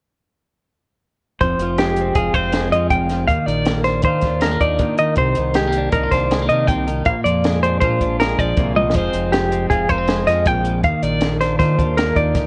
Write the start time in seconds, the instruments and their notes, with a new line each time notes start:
1.41 fingered electric bass F1, clean electric guitar F2 C5, kick, closed hi-hat
1.58 fingered electric bass F1, clean electric guitar F3, closed hi-hat
1.78 clean electric guitar G#3 G4, snare, closed hi-hat
1.96 closed hi-hat
2.01 clean electric guitar C4
2.15 fingered electric bass F1, clean electric guitar F4 G#4, kick, closed hi-hat
2.34 fingered electric bass F1, clean electric guitar C4 C5, kick, closed hi-hat
2.53 clean electric guitar G#3, snare, closed hi-hat
2.72 fingered electric bass F2, clean electric guitar F3 D#5, closed hi-hat
2.90 fingered electric bass F1, clean electric guitar F2 G5, kick, closed hi-hat
3.10 clean electric guitar F3, snare, closed hi-hat
3.28 clean electric guitar D#2 F5, fingered electric bass D#2, kick, closed hi-hat
3.46 fingered electric bass A#1, clean electric guitar D#3 D5, closed hi-hat
3.66 clean electric guitar A#3, snare, closed hi-hat
3.84 clean electric guitar D4 C5, snare, closed hi-hat
4.02 fingered electric bass D#3, clean electric guitar C5, kick, closed hi-hat
4.07 clean electric guitar F4
4.21 fingered electric bass D#2, kick, snare, closed hi-hat
4.27 clean electric guitar D4
4.41 clean electric guitar G#3 A#4, snare, closed hi-hat
4.51 clean electric guitar A#3
4.61 fingered electric bass D#2, clean electric guitar D#3 D5, kick, closed hi-hat
4.79 clean electric guitar D#2, fingered electric bass D#3, kick, closed hi-hat
4.98 clean electric guitar D#3 D#5, closed hi-hat
5.16 fingered electric bass C2, clean electric guitar C3 C5, kick, closed hi-hat
5.35 fingered electric bass C2, clean electric guitar D#3, closed hi-hat
5.54 clean electric guitar G#3 G4, snare, closed hi-hat
5.67 clean electric guitar A#3
5.72 closed hi-hat
5.78 clean electric guitar D4
5.92 fingered electric bass C2, clean electric guitar D#4 A#4, kick, closed hi-hat
6.04 clean electric guitar F4
6.12 fingered electric bass C2, clean electric guitar D4 C5, kick, snare, closed hi-hat
6.31 clean electric guitar G#3, snare, closed hi-hat
6.42 clean electric guitar A#3
6.49 fingered electric bass C3, clean electric guitar D#3 D#5, closed hi-hat
6.67 fingered electric bass C2, clean electric guitar C3 G5, kick, closed hi-hat
6.87 clean electric guitar D#3, closed hi-hat
7.05 fingered electric bass A#1, clean electric guitar A#2 F5, kick, closed hi-hat
7.24 fingered electric bass F2, clean electric guitar F3 D5, closed hi-hat
7.44 clean electric guitar G#3, snare, closed hi-hat
7.63 clean electric guitar D4 C5, closed hi-hat
7.80 fingered electric bass A#2, clean electric guitar F4 C5, kick, closed hi-hat
8.01 fingered electric bass A#1, clean electric guitar D4, kick, closed hi-hat
8.20 clean electric guitar G#3 A#4, snare, closed hi-hat
8.38 fingered electric bass A#1, clean electric guitar F3 D5, kick, closed hi-hat
8.57 fingered electric bass C2, clean electric guitar A#2, kick, closed hi-hat
8.76 clean electric guitar F3 D#5, high tom
8.90 snare
8.94 fingered electric bass F1, clean electric guitar F2 F3 G#3 C4 D#4 C5, kick, closed hi-hat
9.13 fingered electric bass F1, clean electric guitar F3, closed hi-hat
9.32 clean electric guitar G#3 G4, snare, closed hi-hat
9.52 clean electric guitar C4, closed hi-hat
9.70 fingered electric bass F1, clean electric guitar F4 G#4, kick, closed hi-hat
9.89 fingered electric bass F1, clean electric guitar A#3 C5, kick, closed hi-hat
9.98 clean electric guitar C4
10.08 clean electric guitar G#3, snare, closed hi-hat
10.27 fingered electric bass F2, clean electric guitar F3 D#5, snare, closed hi-hat
10.46 fingered electric bass A#1, clean electric guitar F2 G5, kick, closed hi-hat
10.64 clean electric guitar F3, closed hi-hat
10.84 fingered electric bass D#2, clean electric guitar D#2 F5, kick, closed hi-hat
11.03 fingered electric bass A#1, clean electric guitar D#3 D5, closed hi-hat
11.21 clean electric guitar A#3, snare, closed hi-hat
11.41 clean electric guitar D4 C5, snare, closed hi-hat
11.59 fingered electric bass D#3, clean electric guitar F4 C5, kick, snare, closed hi-hat
11.78 fingered electric bass D#2, clean electric guitar D4, kick, closed hi-hat
11.97 clean electric guitar A#3 A#4, snare, closed hi-hat
12.15 fingered electric bass D#2, clean electric guitar D#3 D5, kick, closed hi-hat
12.35 fingered electric bass D2, kick, snare, closed hi-hat